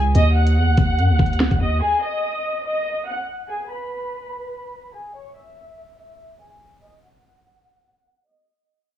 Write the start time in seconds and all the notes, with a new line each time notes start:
Already playing: C#2
0.15 D#2 D#5 D#6, closed hi-hat
0.36 F#5 F#6
0.47 closed hi-hat
0.57 E2
0.68 D#2
0.77 D#2, kick, closed hi-hat
0.99 F#2, closed hi-hat
1.10 D#2
1.19 D#2, kick, closed hi-hat
1.26 closed hi-hat
1.33 closed hi-hat
1.40 C#2, snare
1.51 D#2, kick, closed hi-hat
1.61 D#2 D#5 D#6
1.81 G#4 G#5
2.03 D#5 D#6
2.65 D#5 D#6
3.07 F#5 F#6
3.48 G#4 G#5
3.69 B4 B5
4.94 G#4 G#5
5.15 C#5 C#6
5.36 E5 E6
5.98 E5 E6
6.40 G#4 G#5
6.82 D#5 D#6
7.03 F#5 F#6
8.28 D#5 D#6